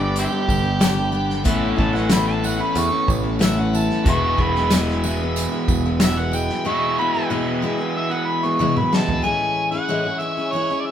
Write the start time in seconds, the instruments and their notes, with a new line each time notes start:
Already playing: picked electric bass G1, overdriven electric guitar G2 D3 G3 B3 D4 G4, tonewheel organ D4 G4 B4
0.00 steel-string acoustic guitar G3 B3 D4 G4, harmonica D5
0.16 harmonica C4 E4 G4, closed hi-hat, tambourine
0.31 steel-string acoustic guitar G3 B3 D4 G4
0.48 picked electric bass G1, kick, tambourine
0.62 steel-string acoustic guitar G3 B3 D4 G4
0.79 steel-string acoustic guitar G2 D3 G3 B3 D4 G4, snare, closed hi-hat, tambourine
0.96 steel-string acoustic guitar G3 B3 D4 G4
1.12 steel-string acoustic guitar G3 B3 D4 G4
1.29 snare
1.44 picked electric bass A1, steel-string acoustic guitar A2 E3 B3 C#4 E4, tonewheel organ C#4 A4, kick, closed hi-hat
1.48 overdriven electric guitar A3 E4, tonewheel organ B4
1.76 picked electric bass A1, steel-string acoustic guitar E3 B3 C#4 E4, harmonica A5, kick
1.93 steel-string acoustic guitar B3 C#4 E4, harmonica F#5, snare
2.10 steel-string acoustic guitar A2 E3 B3 C#4 E4, harmonica B5, snare, closed hi-hat, tambourine
2.28 harmonica A5
2.42 steel-string acoustic guitar E3 B3 C#4 E4, tambourine
2.46 harmonica F#5
2.59 steel-string acoustic guitar B3 C#4 E4, harmonica B5
2.75 picked electric bass E2, harmonica C#6, closed hi-hat, tambourine
2.91 steel-string acoustic guitar B3 C#4 E4
3.08 picked electric bass A1, kick, tambourine
3.23 steel-string acoustic guitar B3 C#4 E4
3.39 steel-string acoustic guitar A2 E3 B3 C#4 E4, snare, closed hi-hat, tambourine
3.44 harmonica E5
3.57 steel-string acoustic guitar B3 C#4 E4, harmonica F#5
3.73 steel-string acoustic guitar E3 B3 C#4 E4, harmonica A5, tambourine
3.90 snare
4.05 picked electric bass E1, steel-string acoustic guitar E2 B2 E3 G#3 B3 E4, tonewheel organ E4 G#4 B4, kick, closed hi-hat
4.09 harmonica C#6
4.37 picked electric bass E1, steel-string acoustic guitar E3 G#3 B3 E4, kick
4.42 harmonica B5
4.55 steel-string acoustic guitar E3 G#3 B3 E4, snare
4.70 steel-string acoustic guitar E2 B2 E3 G#3 B3 E4, snare, closed hi-hat, tambourine
4.89 snare
5.04 steel-string acoustic guitar E3 G#3 B3 E4, tambourine
5.21 steel-string acoustic guitar E3 G#3 B3 E4
5.36 closed hi-hat, tambourine
5.52 steel-string acoustic guitar E3 G#3 B3 E4
5.68 picked electric bass E1, kick, tambourine
5.86 steel-string acoustic guitar E3 G#3 B3 E4
6.00 steel-string acoustic guitar E2 B2 E3 G#3 B3 E4, snare, closed hi-hat, tambourine
6.04 harmonica E5
6.16 steel-string acoustic guitar E3 G#3 B3 E4, harmonica F#5
6.31 steel-string acoustic guitar E3 G#3 B3 E4, harmonica G5, tambourine
6.49 steel-string acoustic guitar E3 G#3 B3 E4, snare
6.64 steel-string acoustic guitar E2 B2 E3 G#3 B3 E4, tonewheel organ G#3 E4 B4, harmonica C#6
6.98 steel-string acoustic guitar E3 G#3 B3 E4, harmonica B5
7.14 steel-string acoustic guitar E3 G#3 B3 E4
7.30 steel-string acoustic guitar E2 B2 E3 G#3 B3 E4
7.62 steel-string acoustic guitar E3 G#3 B3 E4
7.78 steel-string acoustic guitar E3 G#3 B3 E4
7.97 harmonica E5
8.10 steel-string acoustic guitar E3 G#3 B3 E4, harmonica F#5
8.28 harmonica B5
8.43 steel-string acoustic guitar E3 G#3 B3 E4, harmonica C#6
8.59 steel-string acoustic guitar E2 B2 E3 G#3 B3 E4, high tom
8.76 steel-string acoustic guitar E3 G#3 B3 E4, harmonica B5, mid tom
8.92 steel-string acoustic guitar E3 G#3 B3 E4, harmonica A5, snare
9.08 floor tom
9.22 steel-string acoustic guitar A2 E3 G#3 C#4 E4, harmonica G#5
9.27 tonewheel organ E4 G#4 C#5
9.72 steel-string acoustic guitar G#3 C#4 E4, harmonica F#5
9.89 steel-string acoustic guitar A2 E3 G#3 C#4 E4
10.05 steel-string acoustic guitar G#3 C#4 E4
10.19 steel-string acoustic guitar E3 G#3 C#4 E4, harmonica E5
10.37 steel-string acoustic guitar G#3 C#4 E4
10.52 steel-string acoustic guitar E3 G#3 C#4 E4, harmonica C#5
10.70 steel-string acoustic guitar G#3 C#4 E4
10.81 harmonica D5
10.86 harmonica E5